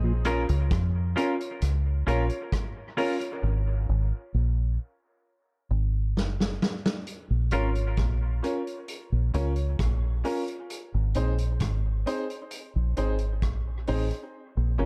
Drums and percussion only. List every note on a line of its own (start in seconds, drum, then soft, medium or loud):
0.25 closed hi-hat medium
0.49 closed hi-hat medium
0.71 kick loud
0.71 cross-stick loud
0.71 closed hi-hat medium
1.17 closed hi-hat medium
1.41 closed hi-hat medium
1.62 cross-stick medium
1.62 closed hi-hat loud
2.08 closed hi-hat medium
2.29 closed hi-hat soft
2.52 kick loud
2.52 cross-stick loud
2.52 closed hi-hat medium
2.98 open hi-hat medium
3.21 closed hi-hat medium
6.17 snare medium
6.40 snare medium
6.62 snare medium
6.86 snare loud
7.07 closed hi-hat medium
7.51 closed hi-hat medium
7.75 closed hi-hat soft
7.97 kick medium
7.97 cross-stick loud
7.97 closed hi-hat medium
8.44 closed hi-hat medium
8.67 closed hi-hat soft
8.88 closed hi-hat medium
9.34 closed hi-hat medium
9.56 closed hi-hat soft
9.79 kick loud
9.79 cross-stick loud
9.79 closed hi-hat medium
10.25 open hi-hat medium
10.48 closed hi-hat medium
10.70 closed hi-hat medium
11.14 closed hi-hat medium
11.38 closed hi-hat medium
11.60 kick medium
11.60 cross-stick loud
11.60 closed hi-hat medium
12.07 closed hi-hat medium
12.30 closed hi-hat soft
12.51 closed hi-hat medium
12.97 closed hi-hat medium
13.18 closed hi-hat soft
13.42 kick loud
13.42 cross-stick loud
13.42 closed hi-hat medium
13.87 open hi-hat medium
14.11 closed hi-hat medium